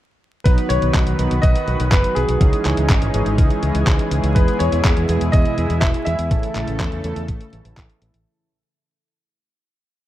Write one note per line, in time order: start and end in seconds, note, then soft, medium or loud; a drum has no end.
0.44 0.56 B1 medium
0.44 2.39 D#3 medium
0.44 2.39 F#3 medium
0.44 1.16 F#3 medium
0.44 2.39 B3 medium
0.44 1.16 B3 medium
0.44 1.16 D#4 medium
0.44 2.39 F#4 medium
0.44 0.50 B4 medium
0.44 2.39 B4 medium
0.44 1.16 B4 medium
0.44 kick loud
0.44 closed hi-hat medium
0.58 closed hi-hat soft
0.69 0.80 B1 medium
0.69 1.45 C#5 loud
0.69 closed hi-hat medium
0.82 0.92 B1 medium
0.82 closed hi-hat soft
0.94 1.05 B1 loud
0.94 kick loud
0.94 clap loud
0.94 closed hi-hat medium
1.07 1.17 B1 medium
1.07 closed hi-hat soft
1.19 1.29 B1 medium
1.19 1.34 F#3 medium
1.19 1.34 B3 medium
1.19 1.34 D#4 medium
1.19 1.34 B4 loud
1.19 closed hi-hat medium
1.31 1.41 B1 medium
1.31 closed hi-hat soft
1.42 1.53 B1 loud
1.42 1.93 D#5 loud
1.42 kick loud
1.42 closed hi-hat medium
1.55 closed hi-hat soft
1.68 1.78 B1 medium
1.68 closed hi-hat soft
1.80 1.90 B1 medium
1.80 closed hi-hat soft
1.91 2.02 F#1 medium
1.91 2.16 B4 loud
1.91 kick loud
1.91 clap loud
1.91 closed hi-hat medium
2.04 closed hi-hat soft
2.15 2.27 B1 medium
2.15 3.58 G#4 medium
2.15 closed hi-hat medium
2.29 2.39 B1 medium
2.29 closed hi-hat soft
2.41 2.51 C#2 medium
2.41 3.11 E3 medium
2.41 8.22 E3 medium
2.41 6.27 G#3 medium
2.41 3.11 C#4 medium
2.41 4.34 C#4 medium
2.41 3.11 D#4 medium
2.41 4.34 D#4 medium
2.41 3.11 G#4 medium
2.41 6.27 G#4 medium
2.41 kick loud
2.41 closed hi-hat medium
2.53 closed hi-hat soft
2.65 2.75 C#2 medium
2.65 clap medium
2.65 closed hi-hat medium
2.77 2.88 C#2 medium
2.77 closed hi-hat soft
2.89 3.00 G#1 medium
2.89 kick loud
2.89 clap loud
2.89 closed hi-hat medium
3.02 3.12 G#1 medium
3.02 closed hi-hat soft
3.14 3.24 G#1 medium
3.14 3.29 E3 medium
3.14 3.29 C#4 medium
3.14 3.29 D#4 medium
3.14 3.29 G#4 loud
3.14 closed hi-hat medium
3.26 3.36 G#1 medium
3.26 closed hi-hat soft
3.38 3.49 C#2 loud
3.38 kick loud
3.38 closed hi-hat medium
3.50 closed hi-hat soft
3.63 3.73 C#2 medium
3.63 closed hi-hat soft
3.75 3.85 C#2 medium
3.75 closed hi-hat soft
3.87 3.97 C#2 medium
3.87 kick loud
3.87 clap loud
3.87 closed hi-hat medium
3.99 closed hi-hat soft
4.11 4.22 C#2 medium
4.11 closed hi-hat medium
4.24 4.34 C#2 medium
4.24 closed hi-hat soft
4.35 4.46 E2 medium
4.35 6.29 B2 medium
4.35 5.06 E3 medium
4.35 5.06 G#3 medium
4.35 5.06 B3 medium
4.35 8.22 E4 medium
4.35 5.06 G#4 medium
4.35 4.61 B4 medium
4.35 kick loud
4.35 closed hi-hat medium
4.48 closed hi-hat soft
4.59 4.71 E2 medium
4.59 5.35 C#5 medium
4.59 closed hi-hat medium
4.72 4.83 E2 medium
4.72 closed hi-hat soft
4.85 4.95 E2 loud
4.85 kick loud
4.85 clap loud
4.85 closed hi-hat medium
4.97 5.07 E2 medium
4.97 closed hi-hat soft
5.09 5.19 E2 medium
5.09 5.24 E3 medium
5.09 5.24 G#3 medium
5.09 5.24 B3 medium
5.09 5.24 G#4 loud
5.09 closed hi-hat medium
5.21 5.31 E2 medium
5.21 closed hi-hat soft
5.32 5.44 E2 loud
5.32 5.83 D#5 loud
5.32 kick loud
5.32 closed hi-hat medium
5.46 closed hi-hat soft
5.58 5.68 E2 medium
5.58 closed hi-hat soft
5.70 5.80 E2 medium
5.70 closed hi-hat soft
5.81 5.92 E1 medium
5.81 5.86 E5 loud
5.81 kick loud
5.81 clap loud
5.81 closed hi-hat medium
5.94 closed hi-hat soft
6.05 6.17 E2 medium
6.05 7.97 E5 loud
6.05 closed hi-hat medium
6.19 6.29 E2 medium
6.19 closed hi-hat soft
6.31 6.41 A1 loud
6.31 8.24 C#3 medium
6.31 7.01 E3 medium
6.31 7.01 A3 medium
6.31 8.24 A3 medium
6.31 7.01 C#4 medium
6.31 7.01 A4 medium
6.31 8.24 A4 medium
6.31 kick loud
6.31 closed hi-hat medium
6.43 closed hi-hat soft
6.55 6.66 A1 medium
6.55 clap medium
6.55 closed hi-hat medium
6.67 6.78 A1 medium
6.67 closed hi-hat soft
6.80 6.90 E2 loud
6.80 kick loud
6.80 clap loud
6.80 closed hi-hat medium
6.92 7.02 E2 medium
6.92 closed hi-hat soft
7.04 7.14 E2 medium
7.04 7.19 E3 medium
7.04 7.19 A3 medium
7.04 7.19 C#4 medium
7.04 7.19 A4 loud
7.04 closed hi-hat medium
7.16 7.27 E2 medium
7.16 closed hi-hat soft
7.28 7.39 A1 loud
7.28 kick loud
7.28 closed hi-hat medium
7.41 closed hi-hat soft
7.53 7.63 A1 medium
7.53 closed hi-hat soft
7.65 7.75 A1 medium
7.65 closed hi-hat soft
7.77 7.88 A1 medium
7.77 kick loud
7.77 clap loud
7.77 closed hi-hat medium
7.90 closed hi-hat soft
8.02 8.12 A1 medium
8.02 closed hi-hat medium
8.14 8.24 A1 medium
8.14 closed hi-hat soft